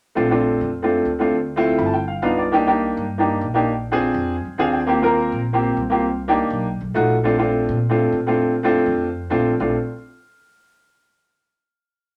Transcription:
0.15 A#1 A3 C4 D4 F4
0.29 A3 C4 D4 F4
0.61 F2
0.82 A3 C4 D4 F4
1.05 D2
1.19 A3 C4 D4 F4
1.56 A3 C4 E4 F4
1.78 G1 B5
1.86 A5
1.94 G5
2.08 F5
2.22 C2 B3 D4 D#4 F4 F5
2.38 D5
2.52 A#3 D4 D#4 G4
2.66 A#3 D4 D#4 G4
2.97 G2
3.18 A#3 D4 D#4 G4
3.41 A#1
3.54 A#3 D4 D#4 G4
3.92 C4 D4 F4 G#4
4.14 F2
4.45 F2
4.58 D#2 C4 D4 F4 G#4 F5
4.73 G5
4.87 A#3 C4 F4 G4
5.02 A#3 C4 F4 A#4
5.32 A#1
5.53 A#3 C4 F4 G4
5.77 C2
5.90 A#3 C4 F4 G4
6.28 A#3 D4 D#4 G4
6.50 B1
6.81 B1
6.94 A#1 A3 D#4 F4 F#4
7.24 A3 C4 D4 F4
7.38 A3 C4 D4 F4
7.69 A#2
7.89 A3 C4 D4 F4
8.12 A#2
8.27 A3 C4 D4 F4
8.63 A3 C4 D4 F4
8.86 F2
9.30 A#1 A3 C4 D4 F4
9.60 A#1 A3 C4 D4 F4

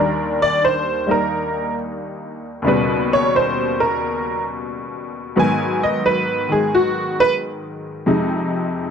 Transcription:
Already playing: D#2 D#3 G3 A#4
0.00 D4
0.42 D5
0.65 C5
1.06 G3 A#3 D#4
1.11 A#4
2.62 D#2 C#3 G3
2.67 B2 B4
3.13 C#5
3.36 C5
3.80 A#4
5.36 G#2 D#3 F#3 B3 G#5
5.83 D#5
6.06 B4
6.49 D#3 G#3 G#4
6.75 F#4
7.20 B4
8.06 F2 C3 G#3 D#4

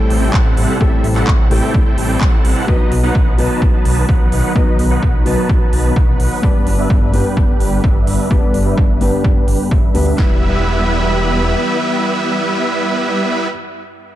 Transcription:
Already playing: A2 C3 G3 A3 C4 E4 A4
0.00 G3 C4 E4 A4 G5
0.10 A1, open hi-hat
0.34 A1 G3 C4 E4 A4 F#5, kick, clap
0.57 A1, open hi-hat
0.80 A1 A2 G3 C4 E4 A4 B4 E5, kick
1.04 A1, open hi-hat
1.16 G3 C4 E4 A4 F#5, clap
1.27 A1, kick, clap
1.39 A1
1.50 A1 A2 G3 C4 E4 A4 G5, open hi-hat
1.74 A1, kick
1.86 G3 C4 E4 A4 G5
1.98 A1, open hi-hat
2.21 A1 G3 C4 E4 A4 F#5, kick, clap
2.45 A1, open hi-hat
2.56 open hi-hat
2.67 B1 B2 D#3 F#3 B3 D#4 B4 D#5, kick
2.92 B1, open hi-hat
3.03 F#3 B3 D#4 B4 F#5
3.15 B1, kick
3.27 B1
3.37 B1 B2 F#3 B3 D#4 B4 A5, open hi-hat
3.62 B1, kick
3.74 F#3 B3 D#4 B4 A5
3.85 B1, open hi-hat
4.09 B1 F#3 B3 D#4 B4 F#5, kick
4.32 B1, open hi-hat
4.54 B1 B2 F#3 B3 D#4 B4 D#5, kick
4.79 B1, open hi-hat
4.91 F#3 B3 D#4 B4 F#5
5.03 B1, kick
5.14 B1
5.25 B1 B2 F#3 B3 D#4 B4 A5, open hi-hat
5.49 B1, kick
5.61 F#3 B3 D#4 B4 A5
5.73 B1, open hi-hat
5.96 B1 F#3 B3 D#4 B4 F#5, kick
6.20 B1, open hi-hat
6.32 open hi-hat
6.42 G1 G2 D3 G3 B3 D4 B4 D5, kick
6.67 G1, open hi-hat
6.78 G3 B3 D4 B4 E5
6.90 G1, kick
7.02 G1
7.12 G1 G2 G3 B3 D4 B4 G5, open hi-hat
7.37 G1, kick
7.49 G3 B3 D4 B4 G5
7.60 G1, open hi-hat
7.84 G1 G3 B3 D4 B4 E5, kick
8.07 G1, open hi-hat
8.29 G1 G2 G3 B3 D4 B4 D5, kick
8.54 G1, open hi-hat
8.66 G3 B3 D4 B4 E5
8.78 G1, kick
8.89 G1
9.00 G1 G2 G3 B3 D4 B4 G5, open hi-hat
9.24 G1, kick
9.36 G3 B3 D4 B4 G5
9.48 G1, open hi-hat
9.71 G1 G3 B3 D4 B4 E5, kick
9.94 D2 G3 B3 D4 B4, open hi-hat
10.06 open hi-hat
10.16 E1 E3 G3 B3 E4 G4 B4 E5 B5, kick, snare

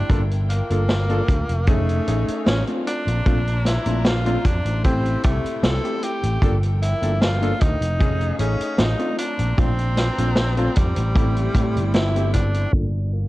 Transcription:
Already playing: D4 G5
0.10 G1 A#3 D4 F4 A4 A#4, kick, closed hi-hat
0.31 closed hi-hat
0.50 A#3, closed hi-hat
0.70 G1 A#3 D4 F4 A4, closed hi-hat
0.89 snare, closed hi-hat
1.09 A#3 D4 F4 A4, closed hi-hat
1.28 D2, kick, closed hi-hat
1.49 F1, closed hi-hat
1.67 A3 C#4 D#4 G#4 C#5 F5, kick, closed hi-hat
1.89 closed hi-hat
2.07 A1 A3 C#4 D#4 G#4, closed hi-hat
2.28 muted fretless electric bass stroke, closed hi-hat
2.46 A1 C#4, snare, closed hi-hat
2.67 A3 C4 D4 F4, closed hi-hat
2.87 D4 C5 A#5, closed hi-hat
3.07 A#1, closed hi-hat
3.26 A#1 A3 C4 D4 F4, kick, closed hi-hat
3.48 closed hi-hat
3.65 E4, snare, closed hi-hat
3.86 A#1 A3 C4 D4 F4, closed hi-hat
4.05 F4, snare, closed hi-hat
4.25 A3 C4 D4 F4, closed hi-hat
4.45 F2 D4, kick, closed hi-hat
4.65 A1, closed hi-hat
4.84 A3 C4 E4 G4 G5, kick, closed hi-hat
5.05 closed hi-hat
5.23 C2 A3 C4 E4 G4, kick, closed hi-hat
5.44 muted fretless electric bass stroke, closed hi-hat
5.63 C2 A4, snare, closed hi-hat
5.83 A3 C4 E4 G4, closed hi-hat
6.03 G4, closed hi-hat
6.23 A1, closed hi-hat
6.42 G1 F3 A#3 D4 F4 A4 A#4, kick, closed hi-hat
6.63 closed hi-hat
6.82 E4, closed hi-hat
7.01 G1 A#3 D4 F4 A4, closed hi-hat
7.21 F4, snare, closed hi-hat
7.41 A#3 D4 F4 A4, closed hi-hat
7.61 D2 D#4, kick, closed hi-hat
7.81 F1, closed hi-hat
8.00 A3 C#4 D#4 G#4 C#5 F5, kick, closed hi-hat
8.21 closed hi-hat
8.39 A1 A3 C#4 D#4 G#4, closed hi-hat
8.60 muted fretless electric bass stroke, closed hi-hat
8.78 A1 D#4, snare, closed hi-hat
8.99 A3 C4 D4 F4, closed hi-hat
9.18 D4 C5 A#5, closed hi-hat
9.39 A#1, closed hi-hat
9.57 A#1 A3 C4 D4 F4, kick, closed hi-hat
9.78 closed hi-hat
9.97 snare, closed hi-hat
10.18 A#1 A3 C4 D4 F4, closed hi-hat
10.36 snare, closed hi-hat
10.57 A3 C4 D4 F4, closed hi-hat
10.76 F2 G3, kick, closed hi-hat
10.96 A1, closed hi-hat
11.15 A3 C4 E4 G4 G5, kick, closed hi-hat
11.36 closed hi-hat
11.54 A2 A3 C4 E4 G4, kick, closed hi-hat
11.76 G1, closed hi-hat
11.94 E4, snare, closed hi-hat
12.15 A3 C4 E4 G4, closed hi-hat
12.34 D4, kick, closed hi-hat
12.54 closed hi-hat
12.73 G1 A#3 D4 F4 A4 A#4 G5, kick
12.94 closed hi-hat
13.13 A#3, closed hi-hat

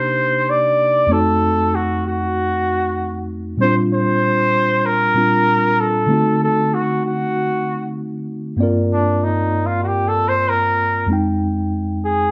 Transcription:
Already playing: C3 A#3 D4 D#4 G4 C5
0.50 D5
1.07 F2 A3 C4
1.12 D#4 F#4 A4
1.75 F#4
2.07 F#4
3.57 A#2 G3 C4
3.61 D4 F4 C5
3.93 C5
4.86 A#4
5.15 A#2 G3 C4 D4 F4
5.80 A4
6.07 D3 A3 C4
6.11 D#4 F#4
6.44 A4
6.74 F#4
7.06 F#4
8.57 G2 A#3 C4 D5
8.62 F4 A#4
8.93 D4
9.24 D#4
9.66 F4
9.83 F#4 G4
10.08 A4
10.28 C5
10.49 A#4
11.07 F2 G#3 C4
11.11 D#4 G5
12.04 G#4

